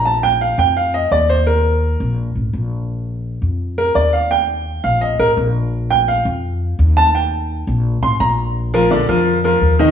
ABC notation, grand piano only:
X:1
M:4/4
L:1/8
Q:1/4=169
K:Bb
V:1 name="Grand piano"
a g f g f e d c | B4 z4 | z4 z B d f | g3 f e B z2 |
z g f z4 a | g z4 c' b z | z [F,FB] [D,Dd] [F,FB]2 [F,FB]2 [E,Ee] |]